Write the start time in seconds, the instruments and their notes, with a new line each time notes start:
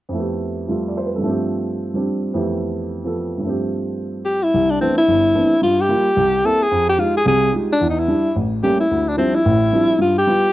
0.09 grand piano F2 E4
0.14 grand piano A3 B3
0.20 grand piano G4
0.67 grand piano F3 G3 A3 F4
0.88 grand piano D5
0.97 grand piano C5
1.06 grand piano B4
1.15 grand piano G2 A4
1.20 grand piano F3 A3
1.26 grand piano C4 G4
1.94 grand piano G3 C4 D4 G4
2.34 grand piano F2 E3 A3 B3 G4
3.04 grand piano F3 B3 A4
3.38 grand piano G2 F3
3.43 grand piano A3 C4
3.49 grand piano G4
4.25 alto saxophone G4
4.43 alto saxophone E4
4.54 grand piano C2
4.71 alto saxophone D4
4.81 grand piano E3 A3 B3 C4 D4, alto saxophone C4
4.98 alto saxophone E4
5.08 grand piano G1
5.35 grand piano E3 A3 B3 C4 D4
5.62 grand piano G2, alto saxophone F4
5.81 alto saxophone G4
5.89 grand piano G3 A#3 F4
6.16 grand piano C2
6.44 grand piano A#3 C4 E4, alto saxophone A4
6.63 alto saxophone G#4
6.71 grand piano F2
6.89 alto saxophone G4
6.98 grand piano G#3 D#4 F4 G4, alto saxophone F4
7.17 alto saxophone G#4
7.25 grand piano C2 C3, alto saxophone G#4
7.52 grand piano G#3 D#4 F4 G4
7.72 alto saxophone D4
7.81 grand piano E2 E3
7.90 alto saxophone D#4
7.99 alto saxophone E4
8.08 grand piano G3 D4 E4
8.36 grand piano A1
8.63 grand piano G3 A3 A#3 C#4, alto saxophone G4
8.80 alto saxophone E4
8.91 grand piano D2
9.09 alto saxophone D4
9.17 grand piano F3 G3 C4 D4 E4, alto saxophone C4
9.35 alto saxophone E4
9.45 grand piano A1 A2
9.73 grand piano F3 G3 C4 D4 E4
9.99 grand piano G2, alto saxophone F4
10.18 alto saxophone G4
10.27 grand piano G3 B3 F4